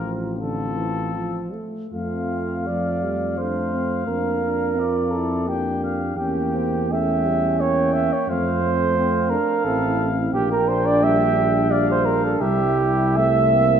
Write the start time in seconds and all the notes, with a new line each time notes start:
Already playing: A1 F3 C4 F4 A#4
0.38 D3 C4 F4 A4
0.77 E3
1.14 F3
1.53 A3
1.90 F2 A3 F4 F5
1.95 C4
2.67 F3 A3 D5
3.03 G3
3.38 A3 D4 C5 F5
3.74 C4
4.07 F2 A#3 D4 A#4
4.43 D4
4.76 C4 F4 D5
5.11 A4
5.16 E4
5.46 A#3 D4 G4 G5
5.83 F5
6.16 E2 A#3 C#4 G4 G5
6.53 C4
6.90 A3 C#4 E5 G5
7.25 G3
7.60 A#3 C#5 G5
7.94 E5
8.13 C#5
8.28 F2 A3 C4 C5 F5
8.63 A3
8.96 C4 F5
9.30 D4 A#4
9.64 A1 C4 E4 A4
10.00 C4
10.33 A#1 A#3 D4 G4 G5
10.52 A#4
10.68 C5
10.86 D5
11.03 G3 E5
11.71 D4 D5 F5
11.91 C5
12.05 A#4
12.24 A4
12.40 C2 G3 E4 G4 E5
12.80 E5
13.17 A3 C4 E5
13.54 A#3